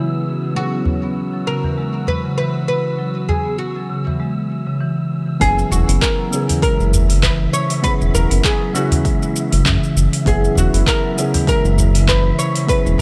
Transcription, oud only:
Already playing: E4
0.56 F#4
1.47 A#4
2.08 B4
2.38 B4
2.68 B4
3.29 G#4
3.58 F#4
5.41 G#4
5.72 F#4
6.02 A#4
6.63 A#4
7.23 B4
7.53 C#5
7.84 B4
8.15 A#4
8.45 G#4
8.75 F#4
10.27 G#4
10.58 F#4
10.88 A#4
11.49 A#4
12.09 B4
12.39 C#5
12.69 B4

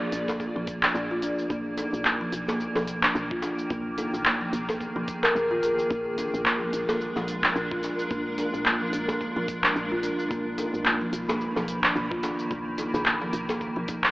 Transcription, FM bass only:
0.12 A#1
0.56 A#1
0.95 A#1
1.50 B1
1.93 B1
2.32 B1
2.75 B1
3.15 B1
3.70 B1
4.13 B1
4.53 B1
4.96 B1
5.35 F#1
5.91 A#1
6.34 A#1
6.73 A#1
7.16 A#1
7.55 A#1
8.11 A#1
8.54 A#1
8.93 A#1
9.36 A#1
9.76 A#1
10.31 B1
10.74 B1
11.13 B1
11.56 B1
11.95 B1
12.51 B1
12.94 B1
13.33 B1
13.77 B1

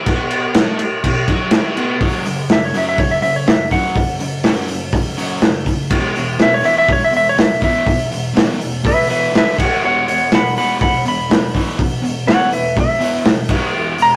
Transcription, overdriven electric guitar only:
0.06 B2 B3
0.55 A2 A3
0.80 muted overdriven electric guitar stroke
1.05 B2
1.29 F#3 F#4
1.53 E3 E4
1.77 B2 B3
2.02 F#2 C#3 F#3
2.26 F#2 C#3
2.50 F#2 C#3
2.74 F#2 C#3 F#3
2.97 F#2 C#3
3.22 F#2 C#3
3.47 F#2 C#3
3.71 F#2 C#3 F#3
3.95 F#2 C#3
4.20 F#2 C#3
4.44 F#2 C#3 F#3
4.69 F#2 C#3
4.94 F#2 C#3
5.17 F#2 C#3 F#3
5.43 F#2 C#3
5.66 F#2 C#3
5.90 E2 B2 E3
6.15 E2 B2
6.38 E2 B2
6.62 E2 B2 E3
6.88 E2 B2
7.12 E2 B2
7.36 E2 B2
7.61 E2 B2 E3
7.86 E2 B2
8.12 E2 B2
8.34 E2 B2 E3
8.60 E2 B2
8.84 E2 B2
9.08 E2 B2 E3
9.33 D3 A3 D4
9.57 A2 E3 A3
9.82 E2 B2 E3
10.07 E2 B2
10.32 E2 B2
10.57 E2 B2 E3
10.81 E2 B2
11.05 E2 B2
11.30 E2 B2
11.54 E2 B2 E3
11.78 E2 B2
12.02 E2 B2
12.27 E2 B2 E3
12.51 E2 B2
12.76 E2 B2
12.99 E2 B2 E3
13.25 E2 B2
13.49 B2 F#3 B3
13.72 E2 B2 E3
13.97 E2 B2

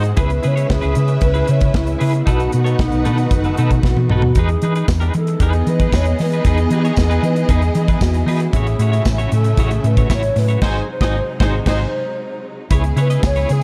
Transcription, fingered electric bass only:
Already playing: G#2
0.18 C#2
0.45 C#3
0.70 C#2
0.84 C#2
0.97 C#3
1.21 C#2
1.49 C#3
1.74 C#2
2.01 C#3
2.27 B1
2.54 B2
2.80 B1
2.93 B1
3.05 B2
3.31 F#1
3.58 B2
3.83 B1
3.96 B2
4.09 B1
4.22 B2
4.35 E2
4.62 E3
4.88 E2
5.14 E3
5.40 E2
5.66 E3
5.92 E2
6.20 E3
6.45 E2
6.71 E3
6.97 E2
7.23 E3
7.49 E2
7.75 E3
8.01 E2
8.26 E3
8.53 A1
8.79 A2
9.06 A1
9.32 A2
9.58 A1
9.84 A2
10.10 A1
10.36 A2
10.62 G#1
11.01 G#1
11.40 G#1
11.66 G#1
12.71 C#2
12.96 C#3
13.23 C#2
13.50 C#3

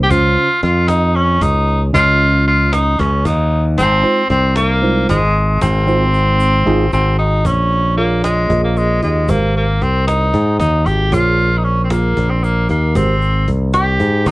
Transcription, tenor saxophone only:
0.03 G4
0.10 F4
0.63 F4
0.88 D#4
1.16 C#4
1.42 D#4
1.94 F4
2.47 F4
2.73 D#4
2.99 C#4
3.25 D#4
3.78 C4
4.30 C4
4.57 A#3
5.09 G#3
5.62 C4
6.93 C4
7.19 D#4
7.46 C#4
7.97 A#3
8.24 G#3
8.64 A#3
8.77 G#3
9.03 G#3
9.30 A#3
9.56 A#3
9.82 C4
10.07 D#4
10.59 D#4
10.86 G4
11.13 F4
11.58 D#4
11.64 C#4
11.84 C4
11.91 A#3
12.29 C4
12.43 A#3
12.70 A#3
12.95 C4
13.74 G4
14.27 D#4

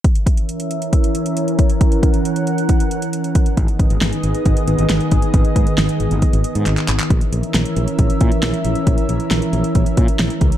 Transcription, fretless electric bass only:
3.57 G#1
3.79 G#1
3.90 G#1
4.01 G#1
4.24 G#1
4.46 G#1
4.68 G#1
4.79 G#1
4.90 G#1
5.12 G#1
5.34 G#1
5.56 G#2
5.78 G#1
6.00 G#1
6.11 G#1
6.33 G#1
6.55 G#2
6.66 G#1
6.88 G#1
7.10 A#1
7.32 A#1
7.55 A#1
7.77 A#1
7.99 A#1
8.21 A#2
8.43 A#1
8.65 A#1
8.87 A#1
9.09 A#1
9.31 A#1
9.53 A#1
9.75 A#1
9.97 A#2
10.19 A#1
10.41 C#2

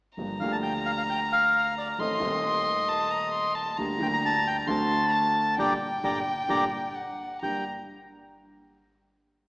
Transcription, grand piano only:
0.18 G1 G2 F3 A#3 D4 G4
0.40 D2 D3 F3 A#3 D4
0.44 G4
1.99 A1 A2 D#3 A3 C4 A4
2.19 D#1 D#2 D#3 A3 C4 A4
3.78 D2 D3 G3 A#3 G4
3.98 D2 D3 G3 A#3
4.03 G4
4.67 D2 D3 A3 C4 F#4
5.58 A#2 D3 G3
6.03 A#2 D3 G3
6.49 A#2 D3 G3
7.42 G2 A#3 D4 G4

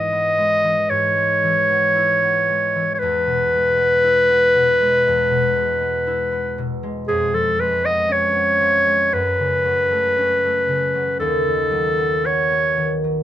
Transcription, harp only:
Already playing: G#2 E3 G#3 B3 E4
0.12 B3
0.37 G#3
0.64 E3
0.90 G#2
1.16 G#3
1.44 E3
1.69 B3
1.95 E4
2.23 B3
2.49 G#3
2.75 E3
3.02 E2
3.27 B2
3.53 G#3
3.77 B3
4.04 E4
4.29 B3
4.55 B2
4.80 G#3
5.07 E2
5.31 B2
5.55 G#3
5.80 B3
6.07 E4
6.32 B3
6.58 B2
6.83 G#3
7.08 F2
7.33 F3
7.59 G#3
7.84 B3
8.09 C#4
8.33 B3
8.60 F3
8.86 G#3
9.12 F#2
9.40 C#3
9.65 F#3
9.91 A3
10.18 C#4
10.44 A3
10.68 C#3
10.95 F#3
11.20 D#2
11.45 D#3
11.71 F#3
11.98 B3
12.24 F#4
12.50 B3
12.77 D#3
13.04 F#3

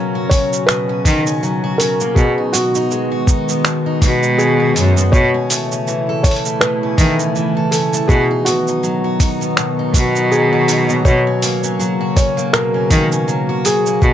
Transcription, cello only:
1.05 D#3
2.16 B2
4.02 B2
4.77 F#2
5.13 B2
6.98 D#3
8.09 B2
9.94 B2
11.05 B2
12.91 D#3
14.02 B2

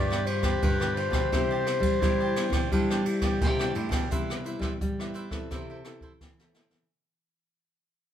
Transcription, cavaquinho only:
0.10 G4 B4 D5
0.26 muted cavaquinho stroke
0.43 G4 B4 D5
0.62 F4 G4 B4 D5
0.80 G4 B4 D5
0.97 F4 G4 B4 D5
1.12 G4 B4 D5
1.32 E4 G4 C5 D5
1.51 G4 C5 D5
1.67 muted cavaquinho stroke
2.02 E4 G4 C5 D5
2.20 G4 C5 D5
2.53 G4 C5 D5
2.73 E4 G4 C5 D5
2.91 G4 C5 D5
3.06 muted cavaquinho stroke
3.22 G4 C5 D5
3.42 E4 G4 C5 D5
3.59 G4 C5 D5
3.75 E4 G4 C5 D5
3.91 G4 C5 D5
4.11 E4 B4 C5 E5
4.44 E4 B4 C5 E5
4.62 E4 B4 C5 E5
5.00 B4 C5 E5
5.14 E4 B4 C5 E5
5.31 B4 C5 E5
5.52 E4 A4 C5 E5
5.70 A4 C5 E5
5.85 E4 A4 C5 E5
6.02 E4 A4 C5 E5
6.40 A4 C5 E5
6.55 E4 A4 C5 E5

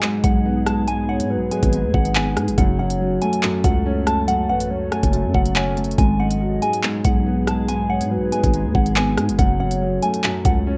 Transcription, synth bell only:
Already playing: G#5
0.24 F#5
0.67 A5
0.88 G#5
1.09 F#5
1.51 G#5
1.94 F#5
2.16 G#5
2.58 F#5
2.79 F#5
3.22 G#5
3.64 F#5
4.07 A5
4.28 F#5
4.49 F#5
4.92 G#5
5.35 F#5
5.56 G#5
5.98 G#5
6.20 F#5
6.62 G#5
7.05 F#5
7.47 A5
7.69 G#5
7.90 F#5
8.32 G#5
8.75 F#5
8.96 G#5
9.39 F#5
9.60 F#5
10.03 G#5
10.45 F#5

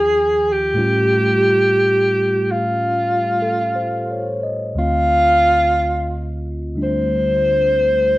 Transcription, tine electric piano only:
Already playing: D#2 D#3 F3 C#4 F4
0.74 A2 G3 A3 C#4
0.78 F4 G4
3.42 A4
3.76 C5
4.11 C#5
4.43 D#5
4.74 D2 D3 A3 C4
4.79 F4
6.75 D3 G3 A3 D4

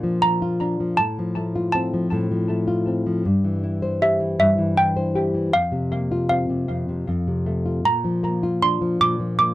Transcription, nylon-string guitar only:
Already playing: A#2 A#3 D4 F4
0.03 F3
0.23 A#3
0.42 F4
0.61 D4
0.80 F3
0.99 A2
1.19 F3
1.37 A3
1.55 F4
1.75 C4
1.94 F3
2.12 A2
2.31 F3
2.49 A3
2.68 F4
2.87 C4
3.06 F3
3.25 G2
3.44 E3
3.64 E4
3.82 C5
4.02 G4
4.20 E3
4.39 G2
4.58 E3
4.77 E4
4.96 C5
5.15 G4
5.34 E3
5.53 F2
5.72 C3
5.92 A#3
6.12 F4
6.31 C4
6.50 C3
6.69 F2
6.89 C3
7.08 F2
7.27 C3
7.46 A3
7.66 F4
7.85 A#2
8.04 F3
8.23 A#3
8.43 F4
8.62 D4
8.81 F3
9.01 A#2
9.20 F3
9.39 A#3

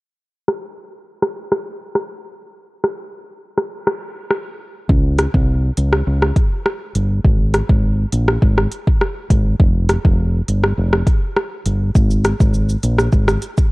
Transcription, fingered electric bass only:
4.89 C#2
5.34 C2
5.78 C#2
6.07 C#2
6.95 G1
7.25 G#1
7.70 G#1
8.13 A#1
8.42 G#1
9.30 G#1
9.60 F1
10.05 F1
10.48 G1
10.77 F1
11.66 G1
11.95 G#1
12.40 G#1
12.83 A#1
13.13 G#1

